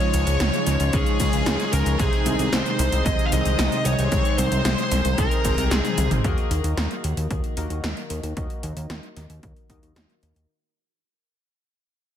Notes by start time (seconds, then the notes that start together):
Already playing: C#3 F3 G#3 C#4 D#4 F4 G#4 C#5 C#6
0.00 closed hi-hat
0.14 C#2, closed hi-hat, shaker
0.27 C#2, closed hi-hat, shaker
0.40 C#2, snare, closed hi-hat, shaker
0.53 closed hi-hat, shaker
0.67 C#2, snare, closed hi-hat, shaker
0.80 C#2, closed hi-hat, shaker
0.93 C#2 G#4 G#5, kick, closed hi-hat, shaker
1.06 closed hi-hat, shaker
1.20 C#2 C#3 G#3 C#4 F4 G#4 C#5, kick, closed hi-hat, shaker
1.33 C#2, closed hi-hat, shaker
1.46 C#2, snare, closed hi-hat, shaker
1.60 closed hi-hat, shaker
1.73 C#2 A#4 A#5, closed hi-hat, shaker
1.86 C#2, closed hi-hat, shaker
1.99 C2 C3 D#3 G#3 C4 D#4 G#4 C5 G#5, kick, closed hi-hat, shaker
2.13 closed hi-hat
2.26 C2, closed hi-hat, shaker
2.39 C2, closed hi-hat, shaker
2.53 C2 C5 C6, snare, closed hi-hat, shaker
2.66 closed hi-hat, shaker
2.79 C2, closed hi-hat, shaker
2.92 C2, closed hi-hat, shaker
3.06 C2 D#5 D#6, kick, closed hi-hat, shaker
3.19 closed hi-hat, shaker
3.25 F5 F6
3.32 C2 C3 G#3 C4 D#4 G#4 C5 D#5 D#6, closed hi-hat, shaker
3.45 C2, closed hi-hat, shaker
3.59 C2, snare, closed hi-hat, shaker
3.72 closed hi-hat, shaker
3.85 C2 C#5 C#6, closed hi-hat, shaker
3.99 C2, closed hi-hat, shaker
4.12 C2 C3 G#3 C4 D#4 G#4 C5, kick, closed hi-hat, shaker
4.25 closed hi-hat, shaker
4.38 C2 C5 C6, closed hi-hat, shaker
4.52 C2, closed hi-hat, shaker
4.65 C2, snare, closed hi-hat, shaker
4.78 closed hi-hat, shaker
4.92 C2, snare, closed hi-hat, shaker
5.05 C2, closed hi-hat, shaker
5.18 C2 A#4 A#5, kick, closed hi-hat, shaker
5.31 closed hi-hat, shaker
5.45 G#1 C3 G#3 C4 D#4 G#4 C5, kick, closed hi-hat, shaker
5.58 C2, closed hi-hat, shaker
5.71 C2 G#4 G#5, snare, closed hi-hat, shaker
5.85 snare, closed hi-hat, high tom, shaker
5.98 C2, closed hi-hat, mid tom, shaker
6.11 G#1, closed hi-hat, mid tom, shaker
6.24 D#2 D#3 A#3 D#4 F#4 A#4 D#5, kick, closed hi-hat
6.38 closed hi-hat
6.51 D#2, closed hi-hat
6.64 D#2, closed hi-hat
6.77 D#2, snare, closed hi-hat
6.91 closed hi-hat
7.04 D#2, closed hi-hat
7.17 D#2, closed hi-hat
7.31 D#2, kick, closed hi-hat
7.44 closed hi-hat
7.57 D#2 D#3 A#3 D#4 F#4 A#4 D#5, closed hi-hat
7.70 D#2, closed hi-hat
7.84 D#2, snare, closed hi-hat
7.97 closed hi-hat
8.10 D#2, closed hi-hat
8.23 D#2, closed hi-hat
8.37 D#2 D#3 A#3 D#4 F#4 A#4 D#5, kick, closed hi-hat
8.50 closed hi-hat
8.63 D#2, closed hi-hat
8.77 D#2, closed hi-hat
8.90 D#2, snare, closed hi-hat
9.03 closed hi-hat
9.17 D#2, snare, closed hi-hat
9.30 D#2, closed hi-hat
9.43 D#2, kick, closed hi-hat
9.56 closed hi-hat
9.70 D#2 D#3 A#3 D#4 F#4 A#4 D#5, kick, closed hi-hat
9.83 D#2, closed hi-hat
9.96 D#2, snare, closed hi-hat
10.10 closed hi-hat
10.23 D#2, closed hi-hat
10.36 D#2, closed hi-hat